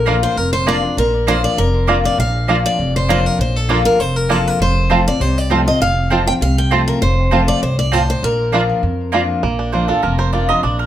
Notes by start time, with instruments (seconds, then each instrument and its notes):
Already playing: upright bass A#1, steel-string acoustic guitar A#2 A#4
0.06 steel-string acoustic guitar F3 A#3 D4 F4, mandolin A#3 F4 D5 A#5, five-string banjo A#3 D4 F4
0.23 steel-string acoustic guitar C5
0.36 upright bass F1, steel-string acoustic guitar F2 A#4
0.53 steel-string acoustic guitar C5
0.66 steel-string acoustic guitar F3 A#3 D4 F4 D5, mandolin A#3 F4 D5 A#5, five-string banjo A#3 D4 F4
0.82 steel-string acoustic guitar D4 F4
0.97 upright bass A#1, steel-string acoustic guitar A#2 A#4
1.27 steel-string acoustic guitar F3 A#3 D4 F4 C5, mandolin A#3 F4 D5 A#5, five-string banjo A#3 D4 F4
1.44 steel-string acoustic guitar D5
1.57 upright bass F1, steel-string acoustic guitar F2 A#4
1.87 steel-string acoustic guitar F3 A#3 D4 F4, mandolin A#3 F4 D5 A#5, five-string banjo A#3 D4 F4
2.05 steel-string acoustic guitar D5
2.18 upright bass A#1, steel-string acoustic guitar A#2 F5
2.47 steel-string acoustic guitar F3 A#3 D4 F4, mandolin A#3 F4 D5 A#5, five-string banjo A#3 D4 F4
2.66 steel-string acoustic guitar D5
2.78 upright bass F1, steel-string acoustic guitar F2
2.96 steel-string acoustic guitar C5
3.08 steel-string acoustic guitar F3 A#3 D4 F4 C5, mandolin A#3 F4 D5 A#5, five-string banjo A#3 D4 F4
3.26 steel-string acoustic guitar A#4
3.39 upright bass A#1, steel-string acoustic guitar A#2 C5
3.56 steel-string acoustic guitar A4
3.68 steel-string acoustic guitar F3 A#3 D4 F4, mandolin A#3 F4 D5 A#5, five-string banjo A#3 D4 F4
3.85 steel-string acoustic guitar A#4
3.99 upright bass F1, steel-string acoustic guitar F2 C5
4.16 steel-string acoustic guitar A#4
4.29 steel-string acoustic guitar F3 A#3 D4 F4 A4, mandolin A#3 F4 D5 A#5, five-string banjo A#3 D4 F4
4.48 steel-string acoustic guitar A#4
4.59 upright bass F1, steel-string acoustic guitar F2 C5
4.89 steel-string acoustic guitar F3 A3 C4 F4, mandolin C4 F4 C5 A5, five-string banjo C4 F4
5.06 steel-string acoustic guitar C4 F4 D5
5.20 upright bass C2, steel-string acoustic guitar C3 C5
5.38 steel-string acoustic guitar D5
5.50 steel-string acoustic guitar F3 A3 C4 F4, mandolin C4 F4 C5 A5, five-string banjo C4 F4
5.65 steel-string acoustic guitar C4 F4 D#5
5.80 upright bass F1, steel-string acoustic guitar F2 F5
6.10 steel-string acoustic guitar F3 A3 C4 F4, mandolin C4 F4 C5 A5, five-string banjo C4 F4
6.26 steel-string acoustic guitar C4 F4 G5
6.41 upright bass C2, steel-string acoustic guitar C3 F5
6.58 steel-string acoustic guitar G5
6.71 steel-string acoustic guitar F3 A3 C4 F4, mandolin C4 F4 C5 A5, five-string banjo C4 F4
6.88 steel-string acoustic guitar A#4
7.02 upright bass F1, steel-string acoustic guitar F2 C5
7.31 steel-string acoustic guitar F3 A3 C4 F4, mandolin C4 F4 C5 A5, five-string banjo C4 F4
7.48 steel-string acoustic guitar D5
7.62 upright bass C2, steel-string acoustic guitar G2 C5
7.79 steel-string acoustic guitar D5
7.92 steel-string acoustic guitar A2 C5, mandolin C4 F4 C5 A5, five-string banjo C4 F4
8.10 steel-string acoustic guitar C5
8.23 upright bass A#1, steel-string acoustic guitar A#2 A#4
8.52 steel-string acoustic guitar F3 A#3 D4 F4, mandolin A#3 F4 D5 A#5, five-string banjo A#3 D4 F4
8.83 upright bass F2, steel-string acoustic guitar F2
9.12 steel-string acoustic guitar F3 A#3 D4 F4, mandolin A#3 F4 D5 A#5, five-string banjo A#3 D4 F4
9.43 upright bass A#1, steel-string acoustic guitar A#2, five-string banjo A#3
9.59 five-string banjo D4
9.72 steel-string acoustic guitar F3 A#3 D4 F4, five-string banjo A#3, mandolin C5
9.88 steel-string acoustic guitar D4 F4, five-string banjo F4, mandolin A4
10.03 upright bass F1, steel-string acoustic guitar F2, five-string banjo A#3, mandolin A#4
10.18 five-string banjo A#4, mandolin C5
10.33 steel-string acoustic guitar F3 A#3 D4 F4, five-string banjo F4, mandolin D5
10.49 steel-string acoustic guitar D4 F4, five-string banjo A#4, mandolin D#5
10.63 upright bass A#1, steel-string acoustic guitar A#2, five-string banjo D4, mandolin D5
10.79 mandolin A#4